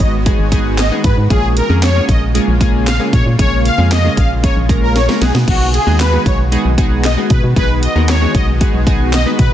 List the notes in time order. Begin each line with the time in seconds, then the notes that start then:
Already playing: D#3 G#3 B3 D#4 F#4 B4
0.00 G#1 D#5, kick, closed hi-hat
0.26 G#3 B3 D#4 F#4 G#4, kick, closed hi-hat
0.39 G#1
0.52 G#3 B3 D#4 F#4 G#4, kick, closed hi-hat
0.78 D#5, snare, clap, closed hi-hat
0.91 G#3 B3 D#4 F#4 G#4
1.04 G#2 B4, kick, closed hi-hat
1.17 G#2
1.30 A#1 C#3 G#3 A#3 C#4 F4 G#4, kick, closed hi-hat
1.57 A#4, closed hi-hat
1.69 F2 G#3 A#3 C#4 F4 G#4
1.82 C#5, snare, clap, closed hi-hat
1.95 G#3 A#3 C#4 F4 G#4
2.09 A#1 D#5, kick, closed hi-hat
2.34 G#3 A#3 C#4 F4 G#4, closed hi-hat
2.48 A#1
2.60 G#3 A#3 C#4 F4 G#4, kick, closed hi-hat
2.87 F5, snare, clap, closed hi-hat
2.99 G#3 A#3 C#4 F4 G#4
3.13 A#2 C#5, kick, closed hi-hat
3.26 A#2
3.39 A#1 G#3 A#3 C#4 F4 G#4 C#5, kick, closed hi-hat
3.65 F5, closed hi-hat
3.78 F2 G#3 A#3 C#4 F4 G#4
3.91 D#5, snare, clap, closed hi-hat
4.04 G#3 A#3 C#4 F4 G#4
4.17 A#1 F5, kick, closed hi-hat
4.43 G#3 A#3 C#4 F4 G#4 C#5, kick, closed hi-hat
4.56 A#1
4.69 G#3 A#3 C#4 F4 A#4, kick, closed hi-hat
4.83 A#4
4.96 C#5, snare, closed hi-hat
5.08 G#3 A#3 C#4 F4 A#4, snare
5.21 B1 D#3 G#3 B3 D#4 F#4 G#4, snare, closed hi-hat
5.35 B2, snare
5.48 B1 F#4, kick, crash
5.74 G#4, closed hi-hat
5.86 D#2 G#3 B3 D#4 F#4 G#4
6.00 B4, snare, clap, closed hi-hat
6.13 G#3 B3 D#4 F#4 G#4
6.26 B1 C#5, kick, closed hi-hat
6.52 G#3 B3 D#4 F#4 G#4, closed hi-hat
6.65 B1
6.78 G#3 B3 D#4 F#4 G#4, kick, closed hi-hat
7.04 D#5, snare, clap, closed hi-hat
7.17 G#3 B3 D#4 F#4 G#4
7.30 B2 B4, kick, closed hi-hat
7.44 B2
7.56 B1 G#3 B3 D#4 F#4 G#4 B4, kick, closed hi-hat
7.83 D#5, closed hi-hat
7.95 D#2 G#3 B3 D#4 F#4 A#4
8.08 C#5, snare, clap, closed hi-hat
8.21 G#3 B3 D#4 F#4 G#4
8.35 B1 D#5, kick, closed hi-hat
8.61 G#3 B3 D#4 F#4 G#4, kick, closed hi-hat
8.74 B1
8.87 G#3 B3 D#4 F#4 G#4, kick, closed hi-hat
9.13 D#5, snare, clap, closed hi-hat
9.26 G#3 B3 D#4 F#4 B4
9.39 B2 B4, kick, closed hi-hat